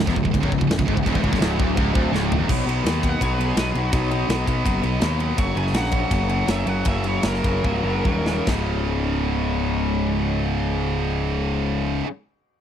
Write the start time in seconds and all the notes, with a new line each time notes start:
0.07 E1 E2, kick, snare
0.16 C#1 C#2, kick
0.25 C#1 C#2, kick
0.31 C#1 C#2, kick, crash
0.36 C#2
0.40 C#1 C#2, kick
0.45 C#2
0.49 C#1 C#2, kick
0.53 C#2
0.58 C#1 C#2, kick
0.63 C#2
0.67 C#1 C#2, snare, crash
0.72 C#2
0.78 C#1 C#2, kick
0.86 G#1 G#2, kick
0.90 G#2
0.94 C#1 C#2, kick
0.99 C#2
1.03 D1 D2, kick
1.07 D2, crash
1.12 E1 E2, kick
1.16 E2
1.24 C#1 C#2, kick
1.33 F#1 F#2, kick, snare
1.41 C#1 C#2, snare, crash
1.60 D1 D2, kick
1.77 C#1 C#2, kick, crash
1.95 D1 D2, kick
2.12 C#1 C#2, snare
2.32 floor tom
2.39 E1 E2
2.48 B1 B2 F#3 B3, kick, crash
2.66 B1 B2 F#3 B3, ride
2.83 D#2 B2 F#3 B3, snare, ride
3.01 B2 F#3 B3, kick, ride
3.10 F#5
3.20 B1 B2 F#3 B3 C#5, kick, ride
3.33 B4
3.38 B2 F#3 B3, ride
3.47 G#4
3.56 B1 B2 F#3 B3 B4, snare, ride
3.70 B2 G#4
3.75 B1 F#3 B3, ride
3.82 F#4
3.92 B1 B2 F#3 B3 D#4, kick, ride
4.10 B2 F#3 B3, ride
4.28 B1 B2 F#3 B3, snare, ride
4.45 B1 B2 F#3 B3, kick, ride
4.64 F#1 B2 F#3 B3, kick, ride
4.81 B1 B2 F#3 B3, ride
4.99 D#2 B2 F#3 B3, snare, ride
5.18 B2 F#3 B3, ride
5.37 F#1 F#2 C#3 F#3 C#6, kick, ride
5.56 F#1 F#2 C#3 F#3 G#5, ride
5.67 snare
5.73 A#1 F#2 C#3 F#3 F#5, snare, ride
5.84 snare
5.91 F#2 C#3 F#3, kick, ride
6.09 F#1 F#2 C#3 F#3, kick, ride
6.28 F#2 C#3 F#3, ride
6.47 F#1 F#2 C#3 F#3 E5, snare, ride
6.65 F#1 F#2 C#3 F#3 F#5, ride
6.85 F#1 F#2 C#3 F#3 E5, kick, ride
7.04 F#2 C#3 F#3 C#5, ride
7.23 F#1 F#2 C#3 F#3 A#4, snare, ride
7.34 snare
7.44 F#1 F#2 C#3 F#3, kick, ride
7.63 C#1 F#2 C#3 F#3, kick
7.84 F#1 F#2 C#3 F#3
8.05 D#1 F#2 C#3 F#3, kick
8.26 F#2 C#3 F#3, snare
8.46 C#1 C#2 G#2, kick, snare, crash
8.51 C#3